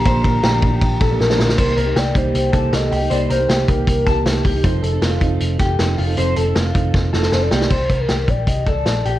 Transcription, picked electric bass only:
\new Staff \with { instrumentName = "Picked electric bass" } { \clef bass \time 4/4 \key c \dorian \tempo 4 = 157 bes,,8 bes,,8 bes,,8 bes,,8 bes,,8 bes,,8 bes,,8 bes,,8 | c,8 c,8 c,8 c,8 c,8 c,8 c,8 c,8 | c,8 c,8 c,8 c,8 c,8 c,8 c,8 c,8 | f,,8 f,,8 f,,8 f,,8 f,,8 f,,8 f,,8 f,,8 |
f,,8 f,,8 f,,8 f,,8 f,,8 f,,8 f,,8 c,8 | c,8 c,8 c,8 bes,,8 c,8 c,8 bes,,8 bes,,8 | }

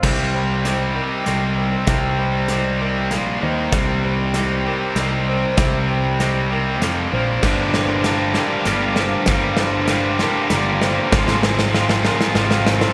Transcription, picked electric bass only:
\new Staff \with { instrumentName = "Picked electric bass" } { \clef bass \time 3/4 \key c \minor \tempo 4 = 97 c,2 c,4 | c,2 bes,,8 ees,8 | c,2 c,4 | c,2 f,8 bes,,8 |
g,,2 g,,4 | g,,2 g,,4 | aes,,2 aes,,4 | }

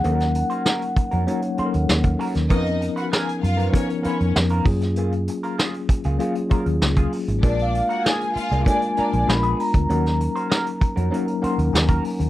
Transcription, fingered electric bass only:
\new Staff \with { instrumentName = "Fingered electric bass" } { \clef bass \time 4/4 \key ees \minor \tempo 4 = 98 ees,8. r4 f,16 r8. ees,16 ees,8 r16 ees,16 | f,8. r8. ges,8 r8. f,16 f,8 ges,8~ | ges,8. r4 des,16 r8. ees,16 des,8 r16 aes,,16 | bes,,8. r4 c,16 r8. bes,,16 bes,,8 r16 d,16 |
ees,8. r4 f,16 r8. ees,16 ees,8 r16 ees,16 | }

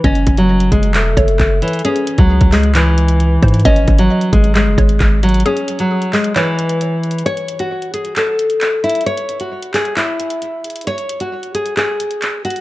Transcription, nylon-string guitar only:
\new Staff \with { instrumentName = "Nylon-string guitar" } { \time 4/4 \key gis \phrygian \tempo 4 = 133 cis'8. fis8. gis8 a4. e8 | cis'8. fis8. gis8 e2 | cis'8. fis8. gis8 gis4. fis8 | cis'8. fis8. gis8 e2 |
cis''8. fis'8. gis'8 a'4. e'8 | cis''8. fis'8. gis'8 e'2 | cis''8. fis'8. gis'8 gis'4. fis'8 | }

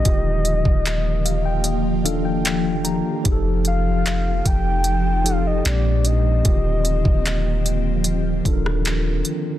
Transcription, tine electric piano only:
\new Staff \with { instrumentName = "Tine electric piano" } { \time 4/4 \key ees \lydian \tempo 4 = 75 << { r4. f''16 g''16 ees''8 f''16 g''16 g''8 bes''8 | r1 | r1 | } \\ { <d ees f' g'>4~ <d ees f' g'>16 r4 r16 <ees d' f' a'>4 r8 | <f ees' g' aes' a'>4~ <f ees' g' aes' a'>16 r4 r16 <f ees' g' a'>8 <bes, aes c' d' g'>4 | <d ees f' g'>4~ <d ees f' g'>16 r4 r16 <ees d' f' a' bes'>4 r8 | } >> }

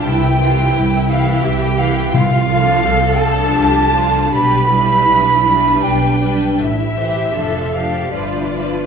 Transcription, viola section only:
\new Staff \with { instrumentName = "Viola section" } { \time 3/4 \key c \major \tempo 4 = 80 <e e'>8 <e e'>4 <e e'>4 <e e'>8 | r8 <f d'>4 <f d'>4 <f d'>8 | <g d'>8 <g d'>4 <g d'>4 <g d'>8 | r8 <e e'>8 <f d'>8 <f d'>8 <f d'>8 <f d'>8 | }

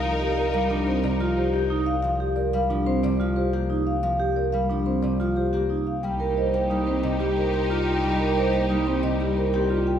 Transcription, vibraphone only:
\new Staff \with { instrumentName = "Vibraphone" } { \time 6/4 \key c \minor \tempo 4 = 180 r8 g'8 bes'8 r8 d'8 c'8 r8 f'8 g'8 r8 ees'8 r8 | r8 g'8 bes'8 r8 d'8 c'8 r8 f'8 g'8 r8 ees'8 r8 | r8 g'8 bes'8 r8 d'8 c'8 r8 f'8 g'8 r8 ees'8 r8 | r8 bes'8 c''8 r8 ees'8 c'8 r8 g'8 bes'8 r8 f'8 r8 |
r8 bes'8 c''8 r8 ees'8 c'8 r8 g'8 bes'8 r8 f'8 r8 | }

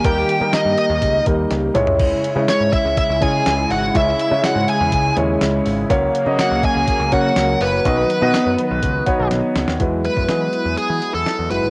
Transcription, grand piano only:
\new Staff \with { instrumentName = "Grand piano" } { \time 4/4 \key b \major \tempo 4 = 123 <g ais dis' ais'>8. <g ais dis' ais'>4. r16 <g ais dis' ais'>4 <gis cis' e' cis''>8~ | <gis cis' e' cis''>8. <gis cis' e' cis''>4. r16 <gis cis' e' cis''>4~ <gis cis' e' cis''>16 r16 | <gis cis' e' cis''>8. <gis cis' e' cis''>4. r16 <gis cis' e' cis''>4~ <gis cis' e' cis''>16 r16 | <ais cis' fis' cis''>8. <ais cis' fis' dis''>4. r16 <ais cis' fis' cis''>4~ <ais cis' fis' cis''>16 r16 |
<b dis' fis' dis''>8. <b dis' fis' dis''>4. r16 <b dis' fis' cis''>4~ <b dis' fis' cis''>16 r16 | \key e \major <gis e' fis' b'>4 <gis e' fis' gis'>4.~ <gis e' fis' gis'>16 r8. <gis e' fis' b'>8 | }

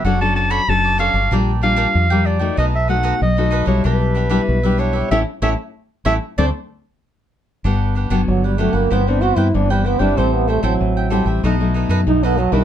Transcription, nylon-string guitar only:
\new Staff \with { instrumentName = "Nylon-string guitar" } { \time 4/4 \key d \major \tempo 4 = 95 << { <cis' d' a'>16 <cis' d' a'>8. <cis' d' a'>8 <cis' d' a'>16 r16 <g d' f'>16 r16 <g d' f'>8. <g d' f'>8 <a ees' fis'>16~ | <a ees' fis'>16 r16 <a dis' fis'>8 r16 <a dis' fis'>8 <g d' e'>4 <g d' e'>8 <g d' e'>8. | <a cis' e'>8 <a cis' e'>8 r8 <a cis' e'>8 <a c' d'>8 r4. | \key g \major <b d'>8. <fis b d'>8. <fis b d'>8 <e b c'>16 <e b c'>8. <e b c'>8. <g c' e'>16~ |
<g c' e'>8. <c' e'>8. <g c' e'>8 <fis a dis'>16 <fis a dis'>8. <fis a dis'>8 r16 <g d' e'>16 | } \\ { fis4 fis4 bes,4 f4 | b,4 fis4 b,4 b,4 | r1 | g,4 d4 g,4 g,4 |
a,4 e4 b,4 fis,4 | } >> }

